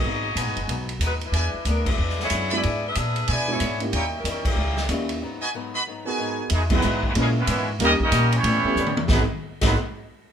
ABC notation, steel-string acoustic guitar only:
X:1
M:4/4
L:1/8
Q:"Swing" 1/4=186
K:G#m
V:1 name="Steel-string acoustic guitar"
[G,,F,B,D] z [G,,F,B,D] z [G,,F,B,D] z [G,,F,B,D] z | [E,B,=DG] z [E,B,DG] z [E,B,DG] z [E,B,DG] z | [E,B,=DG] z [E,B,DG] z [E,B,DG] z [E,B,DG] z | [D,=G,CE] z [D,G,CE] z [D,G,CE] z [D,G,CE] z |
[G,,F,B,D] z [G,,F,B,D] z [G,,F,B,D] z [G,,F,B,D] z | [E,G,DF] z [E,G,DF] z [A,,E,G,C] z [A,,E,G,C] z | [D,A,C=G] z [D,A,CG] z [=A,,=G,B,C] z [A,,G,B,C] z | [G,,F,B,D] z2 [G,,F,B,D] z4 |]